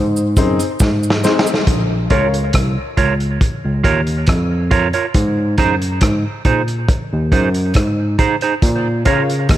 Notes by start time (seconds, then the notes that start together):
Already playing: G#2
0.16 cabasa
0.37 F#2 C4 D#4 G#4 C5, kick, closed hi-hat, cabasa
0.59 closed hi-hat, cabasa
0.80 G#2, kick, snare, cabasa
1.03 cabasa
1.10 snare
1.24 C4 D#4 G#4 C5, snare, cabasa
1.39 snare
1.46 G#4 C5, cabasa
1.54 snare
1.67 A#1, kick, closed hi-hat
2.10 C#2 C#4 F4 A#4 C#5, kick, closed hi-hat
2.34 closed hi-hat
2.53 C2, kick, cross-stick, closed hi-hat
2.97 C#2 F4 A#4 C#5, kick, closed hi-hat
3.20 closed hi-hat
3.41 kick, closed hi-hat
3.65 C#2
3.84 D#2 F4 A#4 C#5, kick, closed hi-hat
4.07 closed hi-hat
4.27 F2, kick, cross-stick, closed hi-hat
4.71 F4 A#4 C#5, kick, closed hi-hat
4.93 F4 A#4 C#5, closed hi-hat
5.14 G#2, kick, closed hi-hat
5.58 F#2 D#4 G#4 C5, kick, cross-stick, closed hi-hat
5.82 closed hi-hat
6.01 G#2, kick, cross-stick, closed hi-hat
6.45 A#2 D#4 G#4 C5, kick, closed hi-hat
6.68 closed hi-hat
6.88 kick, closed hi-hat
7.13 D#2
7.32 F#2 D#4 G#4 C5, kick, closed hi-hat
7.54 closed hi-hat
7.74 G#2, kick, cross-stick, closed hi-hat
8.19 D#4 G#4 C5, kick, closed hi-hat
8.41 D#4 G#4 C5, closed hi-hat
8.62 A#2, kick, closed hi-hat
9.05 C#3 C#4 F4 A#4 C#5, kick, closed hi-hat
9.29 closed hi-hat
9.49 D#2, kick, cross-stick, closed hi-hat